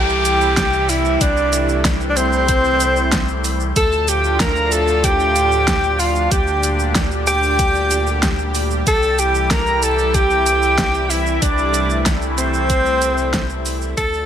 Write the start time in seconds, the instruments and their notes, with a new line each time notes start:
Already playing: analog synth bass C2, analog synth pad C3 E3 G3 E4 G4, tenor saxophone G4, digital synth lead G5, downlifter
0.09 shaker
0.25 closed hi-hat, shaker
0.41 shaker
0.57 kick, snare, closed hi-hat, shaker
0.73 shaker
0.89 tenor saxophone E4, digital synth lead E5, open hi-hat, shaker
1.05 shaker
1.21 analog synth bass C2, analog synth pad A3, tenor saxophone D4, digital synth lead D5, kick, closed hi-hat, shaker
1.37 shaker
1.53 closed hi-hat, shaker
1.69 shaker
1.85 kick, snare, closed hi-hat, shaker
2.01 shaker
2.10 tenor saxophone D4, digital synth lead D5
2.16 tenor saxophone C4, digital synth lead C5, closed hi-hat, shaker
2.33 shaker
2.48 kick, closed hi-hat, shaker
2.64 shaker
2.80 closed hi-hat, shaker
2.96 shaker
3.12 kick, snare, closed hi-hat, shaker
3.28 shaker
3.44 open hi-hat, shaker
3.60 shaker
3.76 analog synth bass D2, analog synth pad A2 D3 F3 D4 F4, tenor saxophone A4, digital synth lead A5, kick, closed hi-hat, shaker
3.92 shaker
4.08 tenor saxophone G4, digital synth lead G5, closed hi-hat, shaker
4.24 shaker
4.40 tenor saxophone A#4, digital synth lead A#5, kick, snare, closed hi-hat, shaker
4.56 shaker
4.72 tenor saxophone A4, digital synth lead A5, closed hi-hat, shaker
4.88 shaker
5.04 tenor saxophone G4, digital synth lead G5, kick, closed hi-hat, shaker
5.20 shaker
5.36 closed hi-hat, shaker
5.52 shaker
5.68 kick, snare, closed hi-hat, shaker
5.84 shaker
5.99 tenor saxophone F4, digital synth lead F5, open hi-hat, shaker
6.15 shaker
6.31 analog synth bass D2, analog synth pad A#2 D3 G3 G4, tenor saxophone G4, digital synth lead G5, kick, closed hi-hat, shaker
6.47 shaker
6.63 closed hi-hat, shaker
6.79 shaker
6.95 kick, snare, closed hi-hat, shaker
7.11 shaker
7.27 tenor saxophone G4, digital synth lead G5, closed hi-hat, shaker
7.43 shaker
7.59 kick, closed hi-hat, shaker
7.75 shaker
7.91 closed hi-hat, shaker
8.07 shaker
8.23 kick, snare, closed hi-hat, shaker
8.39 shaker
8.55 open hi-hat, shaker
8.71 shaker
8.87 analog synth bass C2, analog synth pad C3 E3 E4, tenor saxophone A4, digital synth lead A5, kick, closed hi-hat, shaker
9.03 shaker
9.19 tenor saxophone G4, digital synth lead G5, closed hi-hat, shaker
9.35 shaker
9.50 tenor saxophone A#4, digital synth lead A#5, kick, snare, closed hi-hat, shaker
9.67 shaker
9.82 tenor saxophone A4, digital synth lead A5, closed hi-hat, shaker
9.99 shaker
10.14 tenor saxophone G4, digital synth lead G5, kick, closed hi-hat, shaker
10.30 shaker
10.46 closed hi-hat, shaker
10.62 shaker
10.78 kick, snare, closed hi-hat, shaker
10.94 shaker
11.10 tenor saxophone E4, digital synth lead E5, open hi-hat, shaker
11.26 shaker
11.42 analog synth bass C2, analog synth pad A3, tenor saxophone D4, digital synth lead D5, kick, closed hi-hat, shaker
11.58 shaker
11.74 closed hi-hat, shaker
11.90 shaker
12.06 kick, snare, closed hi-hat, shaker
12.22 shaker
12.37 tenor saxophone C4, digital synth lead C5, closed hi-hat, shaker
12.54 shaker
12.70 kick, closed hi-hat, shaker
12.86 shaker
13.02 closed hi-hat, shaker
13.18 shaker
13.34 kick, snare, closed hi-hat, shaker
13.50 shaker
13.66 open hi-hat, shaker
13.82 shaker
13.97 analog synth bass D2, analog synth pad A2 D3 F3 D4 F4, tenor saxophone A4, digital synth lead A5, kick, closed hi-hat, shaker
14.13 shaker